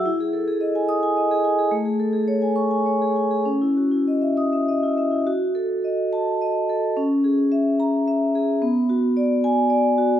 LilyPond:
\new Staff \with { instrumentName = "Vibraphone" } { \time 6/8 \key cis \minor \tempo 4. = 72 << { r4. dis'''8 r4 | r4. cis'''8 r4 | r4. dis'''8 r4 | r4. a''4 r8 |
r4. ais''4 r8 | r4. gis''4 r8 | } \\ { e'16 gis'16 a'16 gis'16 dis''16 gis''8 gis''16 dis''16 gis'16 gis''16 gis'16 | a16 gis'16 a'16 gis'16 cis''16 gis''8 gis''16 cis''16 gis'16 gis''16 gis'16 | cis'16 e'16 fis'16 e'16 dis''16 e''8 e''16 dis''16 e'16 e''16 e'16 | fis'8 a'8 dis''8. r16 dis''8 a'8 |
cis'8 gis'8 e''8. r16 e''8 gis'8 | b8 fis'8 d''8. r16 d''8 fis'8 | } >> }